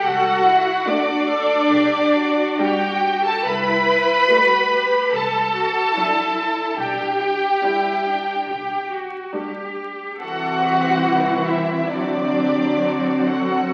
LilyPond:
<<
  \new Staff \with { instrumentName = "Violin section" } { \time 4/4 \key g \major \tempo 4 = 71 fis''4 d''2 g''8. a''16 | b''2 a''2 | g''2~ g''8 r4. | fis''4. e''8 d''4. fis''8 | }
  \new Staff \with { instrumentName = "Cello section" } { \time 4/4 \key g \major a'8 e'8 fis'8 a'8 g'8 fis'4. | e'4 fis'8 g'8 a'8 fis'8 e'4 | d'8 g'8 e'8 d'8 g'8 fis'8 g'4 | a'8 g'8 e'4 fis'8 g'8 fis'8 a'8 | }
  \new Staff \with { instrumentName = "Violin section" } { \time 4/4 \key g \major fis'4 d'2 g'8. a'16 | b'2 a'2 | g'2~ g'8 r4. | fis'4. e'8 d'4. fis'8 | }
  \new Staff \with { instrumentName = "Viola section" } { \time 4/4 \key g \major r4 <a d'>4 r4 <g d'>4 | r4 <g a>4 r4 <fis d'>4 | r4 <g d'>4 r4 <g d'>4 | <e c'>2 <fis c'>2 | }
  \new Staff \with { instrumentName = "Double bass section" } { \clef bass \time 4/4 \key g \major c,4 r4 b,,4 r4 | c,4 r4 c,4 r4 | b,,4 r4 b,,4 r4 | c,2 d,2 | }
>>